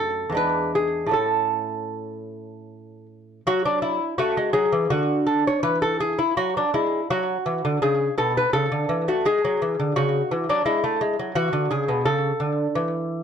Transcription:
Already playing: F#2 A3 C#4 A4
0.30 E2 G#3
0.35 D4 B4
0.75 G#4
1.07 A2 A3
1.11 C#4 A4
3.47 F#3 F#4
3.65 D4
3.82 E4
4.18 A3 F#4
4.37 G#3
4.53 F#3 G#4
4.72 E3
4.90 D3 F#4
5.27 A4
5.47 C#5
5.63 E3 B4
5.82 A4
6.00 G#4
6.19 E4
6.37 F#3 F#4
6.57 D4
6.74 G#3 E4
7.10 F#3 F#4
7.46 E3
7.65 D3
7.82 C#3 G#4
8.18 B2 A4
8.37 B4
8.53 C#3 A4
8.72 D3
8.89 E3
9.08 A3 F#4
9.25 G#3 G#4
9.45 F#3
9.62 E3
9.80 D3
9.96 C#3 F#4
10.31 E3
10.49 F#3 D4
10.65 G#3 E4
10.84 A3
11.01 G#3
11.19 F#3
11.35 E3 F#4
11.53 D3
11.71 C#3 G#4
11.88 B2
12.05 C#3 A4
12.40 D3
12.75 E3

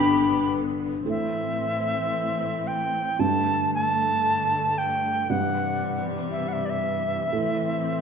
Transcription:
Already playing: G1 G2 D3 B3 D4 G4 B5
1.04 A2 E3 C4
1.10 E5
2.67 G5
3.19 G2 D3 A3 A5
3.75 A5
4.78 G5
5.27 G2 C3 E3 G3 F#5
6.31 E5
6.48 F#5
6.53 E5
6.65 D5
6.70 E5
7.32 A2 C4

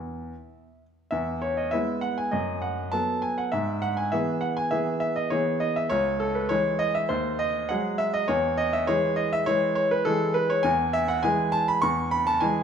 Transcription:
Already playing: E2 E5
1.11 E2 E5
1.42 C#5
1.57 D#5
1.71 G#3 B3 E4 E5
2.01 F#5
2.18 G#5
2.31 F#2 D#5
2.62 F#5
2.92 F#3 B3 A4 A5
3.22 G#5
3.38 F#5
3.52 G#2 E5
3.82 F#5
3.97 G#5
4.12 E3 B3 G#4 E5
4.41 F#5
4.57 G#5
4.71 E3 B3 G#4 E5
5.00 E5
5.16 D#5
5.30 E3 B3 G#4 C#5
5.60 D#5
5.76 E5
5.90 C#2 C#5
6.20 A4
6.35 B4
6.49 E3 G#3 G#4 C#5
6.79 D#5
6.95 E5
7.09 D#2 C5
7.39 D#5
7.69 F#3 G#3 G#4 F#5
7.98 E5
8.14 D#5
8.28 E2 C#5
8.58 D#5
8.73 E5
8.87 E3 G#3 G#4 C#5
9.16 D#5
9.33 E5
9.46 E3 G#3 G#4 C#5
9.75 C#5
9.91 B4
10.05 E3 G#3 G#4 A4
10.34 B4
10.50 C#5
10.63 E2 G#5
10.93 E5
11.08 F#5
11.23 E3 G#3 G#4 G#5
11.52 A5
11.68 B5
11.82 E2 C#6
12.11 B5
12.27 A5
12.40 E3 G#3 G#4 G#5

